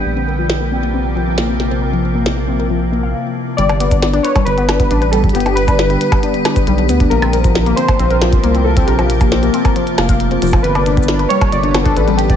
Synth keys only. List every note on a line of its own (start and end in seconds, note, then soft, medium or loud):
3.57 4.26 D5 loud
4.23 4.47 C#5 loud
4.45 5.14 B4 loud
5.11 5.21 A4 medium
5.33 5.57 G4 medium
5.55 6.18 B4 loud
7.10 7.79 A#4 loud
7.76 8.68 C5 loud
8.64 8.88 A4 medium
8.86 9.49 G4 medium
10.63 11.32 B4 medium
11.29 11.81 C#5 loud
11.84 12.19 A4 loud
12.17 12.36 G4 medium